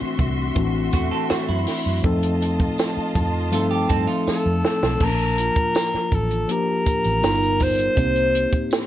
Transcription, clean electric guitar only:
0.93 1.11 A3 medium
0.93 1.11 F#4 medium
1.11 1.30 C4 medium
1.11 1.29 A4 medium
1.30 1.48 A3 medium
1.30 1.48 F#4 medium
1.49 2.02 E4 medium
3.52 3.70 A3 medium
3.52 3.70 F4 medium
3.71 3.89 G4 medium
3.89 4.07 C4 medium
3.89 4.07 A4 medium
4.07 4.97 A3 medium
4.07 4.96 F4 medium

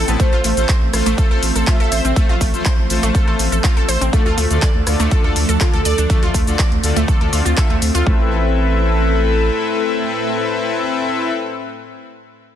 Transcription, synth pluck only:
0.08 0.13 B3 medium
0.20 0.28 A3 loud
0.33 0.40 F4 loud
0.44 0.50 A3 medium
0.69 0.74 C5 medium
1.06 1.14 A3 loud
1.18 1.27 A4 loud
1.31 1.39 A4 medium
1.56 1.67 A4 medium
1.67 1.76 F4 loud
1.80 1.85 A4 loud
1.92 2.04 C5 loud
2.05 2.09 C4 medium
2.16 2.25 A3 loud
2.29 2.37 F4 loud
2.41 2.46 A3 medium
2.66 2.71 C5 medium
3.03 3.11 A3 loud
3.15 3.23 A4 loud
3.28 3.35 A4 medium
3.52 3.63 A4 medium
3.64 3.73 F4 loud
3.77 3.81 A4 loud
3.88 4.01 C5 loud
4.01 4.06 C4 medium
4.13 4.22 A3 loud
4.26 4.34 F4 loud
4.38 4.43 A3 medium
4.62 4.67 D5 medium
5.00 5.08 A3 loud
5.11 5.20 A4 loud
5.24 5.32 A4 medium
5.49 5.60 A4 medium
5.61 5.69 F4 loud
5.74 5.78 A4 loud
5.85 5.97 D5 loud
5.98 6.03 D4 medium
6.10 6.18 A3 loud
6.23 6.31 F4 loud
6.34 6.40 A3 medium
6.59 6.64 D5 medium
6.96 7.04 A3 loud
7.08 7.17 A4 loud
7.21 7.29 A4 medium
7.33 7.44 F4 medium
7.45 7.53 F4 medium
7.57 7.66 A4 loud
7.70 7.78 A3 medium
7.95 8.06 F4 loud
8.06 8.29 A3 loud

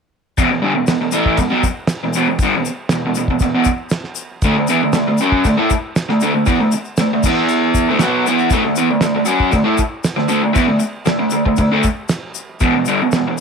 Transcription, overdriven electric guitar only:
0.38 0.50 E2 loud
0.38 0.50 B2 loud
0.51 0.62 E2 medium
0.51 0.63 B2 medium
0.62 0.74 G2 loud
0.62 0.75 D3 loud
0.75 0.87 E2 medium
0.75 0.88 B2 medium
0.89 1.00 E2 medium
0.89 1.00 B2 medium
1.01 1.14 E2 medium
1.01 1.12 B2 medium
1.12 1.38 A2 medium
1.12 1.38 E3 loud
1.12 1.38 A3 loud
1.38 1.51 E2 medium
1.38 1.50 B2 medium
1.51 1.63 B2 loud
1.51 1.64 F#3 loud
1.64 muted overdriven electric guitar stroke medium
2.03 2.14 E2 medium
2.03 2.15 B2 medium
2.15 2.27 E2 medium
2.15 2.28 B2 loud
2.28 2.41 E2 medium
2.28 2.41 B2 medium
2.43 2.53 G2 loud
2.43 2.54 D3 loud
2.56 2.67 E2 medium
2.56 2.68 B2 medium
2.68 muted overdriven electric guitar stroke medium
2.92 3.04 E2 medium
2.92 3.04 B2 medium
3.06 3.17 E2 medium
3.06 3.16 B2 medium
3.17 3.29 E2 medium
3.17 3.29 B2 medium
3.30 3.41 E2 medium
3.30 3.41 B2 medium
3.42 3.53 E2 medium
3.42 3.54 B2 medium
3.55 3.66 E2 medium
3.55 3.67 B2 loud
4.44 4.56 D3 loud
4.44 4.56 A3 loud
4.57 4.69 D3 medium
4.57 4.69 A3 medium
4.69 4.81 E3 loud
4.69 4.81 B3 loud
4.82 4.93 D3 medium
4.82 4.94 A3 medium
4.94 5.06 D3 medium
4.94 5.06 A3 medium
5.07 5.20 D3 medium
5.07 5.20 A3 medium
5.21 5.45 F#3 medium
5.21 5.45 C#4 medium
5.21 5.46 F#4 medium
5.46 5.58 D3 medium
5.46 5.56 A3 medium
5.58 5.70 A3 loud
5.58 5.70 E4 loud
5.72 muted overdriven electric guitar stroke medium
6.09 6.21 D3 medium
6.09 6.22 A3 medium
6.23 6.33 D3 loud
6.23 6.33 A3 loud
6.34 6.46 D3 medium
6.34 6.47 A3 medium
6.46 6.59 E3 loud
6.46 6.59 B3 loud
6.60 6.73 D3 medium
6.60 6.73 A3 medium
6.74 muted overdriven electric guitar stroke medium
7.00 7.12 D3 medium
7.00 7.12 A3 medium
7.13 7.25 D3 medium
7.13 7.25 A3 medium
7.26 7.88 E3 medium
7.26 7.88 B3 loud
7.26 7.89 E4 loud
7.89 8.00 D3 medium
7.89 8.01 A3 loud
8.01 8.26 B2 medium
8.01 8.26 F#3 loud
8.01 8.27 B3 loud
8.27 8.51 E3 medium
8.27 8.52 B3 medium
8.27 8.52 E4 loud
8.52 8.62 D3 medium
8.52 8.63 A3 loud
8.63 8.77 D3 medium
8.63 8.77 A3 medium
8.78 8.89 E3 medium
8.78 8.90 B3 loud
8.90 9.01 D3 medium
8.90 9.01 A3 medium
9.02 9.14 D3 medium
9.02 9.15 A3 medium
9.15 9.25 D3 medium
9.15 9.27 A3 medium
9.25 9.51 F#3 loud
9.25 9.52 C#4 loud
9.25 9.53 F#4 loud
9.52 9.66 D3 medium
9.52 9.63 A3 medium
9.64 9.78 A3 medium
9.64 9.78 E4 loud
9.77 muted overdriven electric guitar stroke medium
10.17 10.27 D3 medium
10.17 10.28 A3 medium
10.29 10.42 D3 loud
10.29 10.42 A3 loud
10.43 10.53 D3 medium
10.43 10.55 A3 medium
10.53 10.67 E3 loud
10.53 10.67 B3 loud
10.68 10.78 D3 medium
10.68 10.81 A3 medium
10.80 muted overdriven electric guitar stroke medium
11.06 11.18 D3 medium
11.06 11.18 A3 medium
11.19 11.31 D3 medium
11.19 11.32 A3 medium
11.32 11.45 D3 medium
11.32 11.44 A3 medium
11.45 11.57 D3 medium
11.45 11.58 A3 medium
11.58 11.70 D3 medium
11.58 11.71 A3 medium
11.72 11.84 D3 medium
11.72 11.84 A3 loud
12.61 12.73 E2 loud
12.61 12.74 B2 loud
12.76 12.87 E2 medium
12.76 12.88 B2 medium
12.88 13.00 G2 loud
12.88 13.00 D3 loud
13.02 13.14 E2 medium
13.02 13.14 B2 medium
13.16 13.26 E2 medium
13.16 13.27 B2 medium
13.27 13.39 E2 medium
13.27 13.39 B2 medium

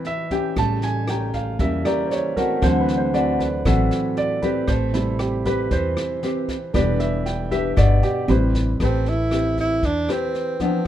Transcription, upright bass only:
0.56 1.55 A1 loud
1.59 1.83 E2 medium
2.62 3.61 D2 loud
3.65 3.89 A1 medium
4.68 5.67 A1 loud
5.71 5.95 E2 medium
6.74 7.73 E1 loud
7.77 8.01 G1 loud
8.28 8.76 A1 loud
8.80 9.79 A1 loud
9.83 10.07 E2 medium

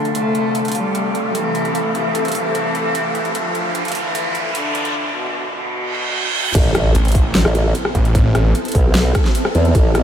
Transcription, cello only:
0.15 0.67 A3 loud
0.75 1.27 G3 loud
1.35 1.87 E3 medium
1.95 2.24 E3 medium
2.35 3.27 E3 loud
3.35 3.87 F3 loud
3.95 4.47 E3 medium
4.55 5.07 D3 loud
5.15 5.44 B2 medium
5.55 6.47 B2 loud

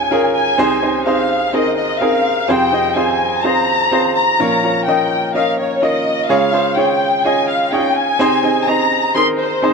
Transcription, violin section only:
0.00 0.33 G#5 medium
0.34 1.02 G#5 medium
1.06 1.53 F5 medium
1.54 1.76 D#5 medium
1.77 1.99 D#5 medium
2.01 2.49 F5 medium
2.49 2.96 G5 medium
2.96 3.44 G#5 medium
3.43 4.14 A#5 medium
4.15 4.83 A#5 medium
4.87 5.34 G5 medium
5.35 5.57 F5 medium
5.59 5.81 C#5 medium
5.83 6.30 D#5 medium
6.30 6.78 F5 medium
6.78 7.25 G5 medium
7.25 7.49 G#5 loud
7.49 7.71 F5 medium
7.72 7.96 G5 medium
7.96 8.68 G#5 loud
8.68 9.15 A#5 medium
9.15 9.26 C6 loud
9.39 9.73 C5 medium

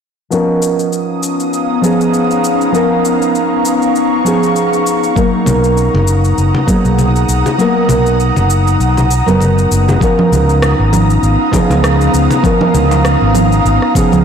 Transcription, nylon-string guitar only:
0.30 1.79 F3 medium
0.30 1.80 B3 medium
0.30 1.80 C#4 medium
0.30 1.81 D#4 medium
0.30 1.81 A#4 medium
1.82 2.70 F3 medium
1.82 2.71 B3 medium
1.82 2.71 C#4 medium
1.82 2.71 D#4 medium
1.82 2.72 G#4 medium
2.72 4.21 F3 medium
2.72 4.22 B3 medium
2.72 4.22 C#4 medium
2.72 4.22 D#4 medium
2.72 4.23 A#4 medium
4.24 5.13 F3 medium
4.24 5.13 B3 medium
4.24 5.13 C#4 medium
4.24 5.14 D#4 medium
4.24 5.14 G#4 medium
5.15 6.64 F#3 medium
5.15 6.65 A#3 medium
5.15 6.65 B3 medium
5.15 6.65 D#4 medium
5.15 6.66 A#4 medium
6.67 7.55 F#3 medium
6.67 7.55 A#3 medium
6.67 7.56 B3 medium
6.67 7.56 D#4 medium
6.67 7.57 G#4 medium
7.58 9.07 F#3 medium
7.58 9.07 A#3 medium
7.58 9.07 B3 medium
7.58 9.08 D#4 medium
7.58 9.08 A#4 medium
9.26 9.98 F#3 medium
9.26 9.98 B3 medium
9.26 9.99 D#4 medium
9.26 9.98 A#4 medium
9.26 9.99 B4 medium
10.00 11.49 F3 medium
10.00 11.49 B3 medium
10.00 11.50 C#4 medium
10.00 11.50 D#4 medium
10.00 11.51 A#4 medium
11.51 12.40 F3 medium
11.51 12.40 B3 medium
11.51 12.41 C#4 medium
11.51 12.41 D#4 medium
11.51 12.41 G#4 medium
12.43 13.92 F3 medium
12.43 13.92 B3 medium
12.43 13.92 C#4 medium
12.43 13.93 D#4 medium
12.43 13.93 A#4 medium
13.95 14.24 F3 medium
13.95 14.24 B3 medium
13.95 14.24 C#4 medium
13.95 14.24 D#4 medium
13.95 14.24 G#4 medium

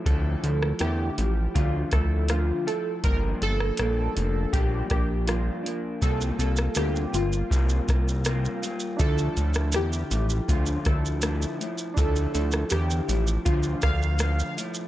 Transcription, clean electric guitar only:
0.05 0.43 D3 medium
0.05 0.43 F3 medium
0.05 0.43 A3 medium
0.05 0.41 E4 medium
0.42 0.81 F3 soft
0.42 0.81 A3 soft
0.42 0.80 E4 soft
0.80 1.18 D3 medium
0.80 1.17 A3 medium
0.80 1.16 E4 medium
1.17 1.54 F3 soft
1.17 1.55 A3 soft
1.17 1.55 E4 soft
1.54 1.92 D3 medium
1.54 1.93 F3 medium
1.54 1.92 A3 medium
1.92 2.29 F3 soft
1.92 2.30 A3 soft
1.92 2.29 E4 medium
2.29 2.66 D3 medium
2.29 2.67 F3 medium
2.29 2.66 A3 medium
2.66 3.03 F3 soft
2.66 3.04 A3 soft
2.66 3.04 E4 medium
3.03 3.41 G2 medium
3.03 3.41 F3 medium
3.03 3.41 A#3 medium
3.03 3.40 D4 medium
3.41 3.78 F3 soft
3.41 3.79 A#3 medium
3.41 3.78 D4 soft
3.79 4.16 G2 soft
3.79 4.16 F3 medium
3.79 4.16 A#3 medium
3.79 4.14 D4 medium
4.15 4.52 F3 soft
4.15 4.53 A#3 soft
4.15 4.53 D4 soft
4.52 4.90 G2 medium
4.52 4.90 F3 medium
4.52 4.90 A#3 medium
4.52 4.88 D4 medium
4.89 5.27 F3 soft
4.89 5.28 A#3 medium
4.89 5.27 D4 medium
5.27 5.64 G2 medium
5.27 5.65 F3 medium
5.27 5.64 A#3 medium
5.27 5.62 D4 medium
5.63 6.02 F3 soft
5.63 6.01 A#3 soft
5.63 6.01 D4 soft
6.01 6.39 C3 medium
6.01 6.39 G3 medium
6.01 6.38 A#3 medium
6.01 6.37 F4 medium
6.38 6.75 G3 soft
6.38 6.76 A#3 soft
6.38 6.76 F4 soft
6.75 7.13 C3 medium
6.75 7.13 G3 medium
6.75 7.12 A#3 medium
6.75 7.11 F4 medium
7.12 7.49 G3 soft
7.12 7.50 A#3 soft
7.12 7.50 F4 medium
7.50 7.88 C3 medium
7.50 7.88 G3 medium
7.50 7.87 A#3 medium
7.50 7.86 F4 medium
7.87 8.25 G3 soft
7.87 8.26 A#3 soft
7.87 8.25 F4 medium
8.25 8.62 C3 medium
8.25 8.63 G3 medium
8.25 8.62 A#3 medium
8.25 8.61 F4 medium
8.62 9.00 G3 soft
8.62 9.00 A#3 medium
8.62 9.00 F4 medium
8.99 9.37 D3 medium
8.99 9.37 F3 medium
8.99 9.37 A3 medium
8.99 9.36 E4 medium
9.37 9.75 F3 soft
9.37 9.75 A3 medium
9.37 9.74 E4 medium
9.74 10.11 D3 medium
9.74 10.11 A3 medium
9.74 10.10 E4 medium
10.11 10.47 F3 soft
10.11 10.48 A3 soft
10.11 10.48 E4 medium
10.48 10.86 D3 medium
10.48 10.86 F3 medium
10.48 10.85 A3 medium
10.85 11.22 F3 soft
10.85 11.23 A3 medium
10.85 11.23 E4 medium
11.22 11.60 D3 medium
11.22 11.60 F3 medium
11.22 11.60 A3 medium
11.22 11.58 E4 medium
11.59 11.96 F3 soft
11.59 11.97 A3 soft
11.59 11.97 E4 medium
11.97 12.34 D3 medium
11.97 12.35 F3 medium
11.97 12.34 A3 medium
11.97 12.33 E4 medium
12.34 12.73 F3 soft
12.34 12.71 A3 soft
12.34 12.71 E4 medium
12.71 13.08 D3 medium
12.71 13.08 A3 medium
12.71 13.06 E4 medium
13.08 13.45 F3 soft
13.08 13.46 A3 medium
13.08 13.45 E4 medium
13.46 13.83 D3 medium
13.46 13.83 F3 medium
13.46 13.83 A3 medium
13.84 14.19 F3 soft
13.84 14.20 A3 soft
14.19 14.57 D3 medium
14.19 14.58 F3 medium
14.19 14.57 A3 medium
14.57 14.88 F3 soft
14.57 14.88 A3 soft
14.57 14.88 E4 medium

